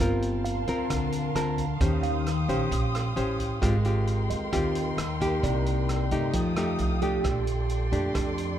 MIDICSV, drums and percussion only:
0, 0, Header, 1, 2, 480
1, 0, Start_track
1, 0, Time_signature, 4, 2, 24, 8
1, 0, Key_signature, -2, "minor"
1, 0, Tempo, 453172
1, 9095, End_track
2, 0, Start_track
2, 0, Title_t, "Drums"
2, 0, Note_on_c, 9, 37, 50
2, 0, Note_on_c, 9, 42, 51
2, 102, Note_off_c, 9, 37, 0
2, 102, Note_off_c, 9, 42, 0
2, 237, Note_on_c, 9, 42, 38
2, 343, Note_off_c, 9, 42, 0
2, 479, Note_on_c, 9, 42, 39
2, 585, Note_off_c, 9, 42, 0
2, 714, Note_on_c, 9, 36, 22
2, 715, Note_on_c, 9, 42, 36
2, 820, Note_off_c, 9, 36, 0
2, 821, Note_off_c, 9, 42, 0
2, 954, Note_on_c, 9, 37, 56
2, 954, Note_on_c, 9, 42, 59
2, 955, Note_on_c, 9, 36, 52
2, 1060, Note_off_c, 9, 37, 0
2, 1060, Note_off_c, 9, 42, 0
2, 1061, Note_off_c, 9, 36, 0
2, 1190, Note_on_c, 9, 42, 41
2, 1296, Note_off_c, 9, 42, 0
2, 1435, Note_on_c, 9, 37, 56
2, 1435, Note_on_c, 9, 42, 45
2, 1541, Note_off_c, 9, 37, 0
2, 1541, Note_off_c, 9, 42, 0
2, 1673, Note_on_c, 9, 36, 20
2, 1673, Note_on_c, 9, 42, 35
2, 1779, Note_off_c, 9, 36, 0
2, 1779, Note_off_c, 9, 42, 0
2, 1913, Note_on_c, 9, 42, 61
2, 1915, Note_on_c, 9, 36, 59
2, 2019, Note_off_c, 9, 42, 0
2, 2020, Note_off_c, 9, 36, 0
2, 2153, Note_on_c, 9, 42, 35
2, 2259, Note_off_c, 9, 42, 0
2, 2399, Note_on_c, 9, 37, 52
2, 2399, Note_on_c, 9, 42, 36
2, 2504, Note_off_c, 9, 37, 0
2, 2504, Note_off_c, 9, 42, 0
2, 2636, Note_on_c, 9, 36, 22
2, 2639, Note_on_c, 9, 42, 36
2, 2741, Note_off_c, 9, 36, 0
2, 2745, Note_off_c, 9, 42, 0
2, 2876, Note_on_c, 9, 36, 48
2, 2879, Note_on_c, 9, 42, 47
2, 2982, Note_off_c, 9, 36, 0
2, 2985, Note_off_c, 9, 42, 0
2, 3122, Note_on_c, 9, 37, 55
2, 3122, Note_on_c, 9, 42, 35
2, 3228, Note_off_c, 9, 37, 0
2, 3228, Note_off_c, 9, 42, 0
2, 3355, Note_on_c, 9, 42, 38
2, 3461, Note_off_c, 9, 42, 0
2, 3595, Note_on_c, 9, 36, 24
2, 3598, Note_on_c, 9, 42, 38
2, 3701, Note_off_c, 9, 36, 0
2, 3704, Note_off_c, 9, 42, 0
2, 3834, Note_on_c, 9, 36, 63
2, 3839, Note_on_c, 9, 37, 58
2, 3839, Note_on_c, 9, 42, 51
2, 3940, Note_off_c, 9, 36, 0
2, 3945, Note_off_c, 9, 37, 0
2, 3945, Note_off_c, 9, 42, 0
2, 4074, Note_on_c, 9, 42, 34
2, 4180, Note_off_c, 9, 42, 0
2, 4315, Note_on_c, 9, 42, 32
2, 4421, Note_off_c, 9, 42, 0
2, 4555, Note_on_c, 9, 36, 22
2, 4558, Note_on_c, 9, 42, 42
2, 4660, Note_off_c, 9, 36, 0
2, 4664, Note_off_c, 9, 42, 0
2, 4794, Note_on_c, 9, 36, 54
2, 4794, Note_on_c, 9, 37, 57
2, 4794, Note_on_c, 9, 42, 51
2, 4900, Note_off_c, 9, 36, 0
2, 4900, Note_off_c, 9, 37, 0
2, 4900, Note_off_c, 9, 42, 0
2, 5033, Note_on_c, 9, 42, 43
2, 5139, Note_off_c, 9, 42, 0
2, 5275, Note_on_c, 9, 37, 63
2, 5275, Note_on_c, 9, 42, 45
2, 5381, Note_off_c, 9, 37, 0
2, 5381, Note_off_c, 9, 42, 0
2, 5515, Note_on_c, 9, 36, 21
2, 5521, Note_on_c, 9, 42, 39
2, 5621, Note_off_c, 9, 36, 0
2, 5627, Note_off_c, 9, 42, 0
2, 5755, Note_on_c, 9, 36, 61
2, 5757, Note_on_c, 9, 42, 53
2, 5861, Note_off_c, 9, 36, 0
2, 5863, Note_off_c, 9, 42, 0
2, 5998, Note_on_c, 9, 42, 37
2, 6104, Note_off_c, 9, 42, 0
2, 6239, Note_on_c, 9, 37, 49
2, 6239, Note_on_c, 9, 42, 39
2, 6345, Note_off_c, 9, 37, 0
2, 6345, Note_off_c, 9, 42, 0
2, 6473, Note_on_c, 9, 36, 20
2, 6473, Note_on_c, 9, 42, 40
2, 6579, Note_off_c, 9, 36, 0
2, 6579, Note_off_c, 9, 42, 0
2, 6708, Note_on_c, 9, 42, 58
2, 6713, Note_on_c, 9, 36, 51
2, 6814, Note_off_c, 9, 42, 0
2, 6818, Note_off_c, 9, 36, 0
2, 6951, Note_on_c, 9, 37, 58
2, 6951, Note_on_c, 9, 42, 33
2, 7057, Note_off_c, 9, 37, 0
2, 7057, Note_off_c, 9, 42, 0
2, 7187, Note_on_c, 9, 42, 39
2, 7293, Note_off_c, 9, 42, 0
2, 7431, Note_on_c, 9, 36, 23
2, 7432, Note_on_c, 9, 42, 34
2, 7537, Note_off_c, 9, 36, 0
2, 7538, Note_off_c, 9, 42, 0
2, 7672, Note_on_c, 9, 36, 52
2, 7673, Note_on_c, 9, 37, 55
2, 7673, Note_on_c, 9, 42, 56
2, 7778, Note_off_c, 9, 36, 0
2, 7779, Note_off_c, 9, 37, 0
2, 7779, Note_off_c, 9, 42, 0
2, 7913, Note_on_c, 9, 42, 36
2, 8019, Note_off_c, 9, 42, 0
2, 8150, Note_on_c, 9, 42, 35
2, 8256, Note_off_c, 9, 42, 0
2, 8392, Note_on_c, 9, 36, 18
2, 8395, Note_on_c, 9, 42, 36
2, 8498, Note_off_c, 9, 36, 0
2, 8501, Note_off_c, 9, 42, 0
2, 8630, Note_on_c, 9, 37, 57
2, 8630, Note_on_c, 9, 42, 46
2, 8632, Note_on_c, 9, 36, 55
2, 8736, Note_off_c, 9, 37, 0
2, 8736, Note_off_c, 9, 42, 0
2, 8738, Note_off_c, 9, 36, 0
2, 8874, Note_on_c, 9, 42, 38
2, 8980, Note_off_c, 9, 42, 0
2, 9095, End_track
0, 0, End_of_file